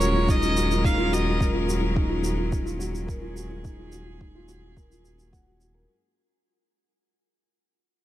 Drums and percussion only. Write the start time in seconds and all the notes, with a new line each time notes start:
0.01 shaker
0.29 kick, shaker
0.42 shaker
0.57 shaker
0.71 shaker
0.84 kick, shaker
1.14 shaker
1.40 kick, shaker
1.69 shaker
1.96 kick
2.24 shaker
2.52 kick, shaker
2.67 shaker
2.81 shaker
2.95 shaker
3.08 kick, shaker
3.37 shaker
3.65 kick, shaker
3.92 shaker
4.21 kick
4.49 shaker
4.77 kick, shaker
4.92 shaker
5.05 shaker
5.19 shaker
5.33 kick, shaker
5.61 shaker